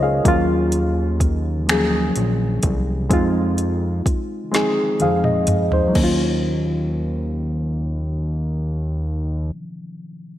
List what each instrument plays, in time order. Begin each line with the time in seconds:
Already playing: analog synth bass C#2, reed electric piano C4 C#4 D#4 F4 G#4 A#4 C5 C#5 D#5
0.03 reed electric piano G#4 F5
0.24 analog synth bass D#2, reed electric piano F#3 A#3 C#4 F4, kick, closed hi-hat
0.72 closed hi-hat
1.20 kick, closed hi-hat
1.67 reed electric piano F3 A#3 C#4, finger snap, closed hi-hat
1.71 reed electric piano F#3 G#4
2.16 analog synth bass A#1, closed hi-hat
2.63 analog synth bass C2, kick, closed hi-hat
3.09 analog synth bass F2, reed electric piano G#3 C4 D#4 F4, kick, closed hi-hat
3.58 closed hi-hat
4.06 analog synth bass F2, kick, closed hi-hat
4.51 analog synth bass F2, reed electric piano G#3 C4 D#4, snare, closed hi-hat
4.56 reed electric piano G#4
5.00 analog synth bass F2, reed electric piano G#4 F5, closed hi-hat, high tom
5.24 reed electric piano D#5, mid tom
5.47 closed hi-hat, mid tom
5.72 reed electric piano D#4 C5, floor tom
5.88 reed electric piano F#3
5.93 analog synth bass D#2, reed electric piano A#3, kick, crash
5.98 reed electric piano C#4
6.04 reed electric piano F4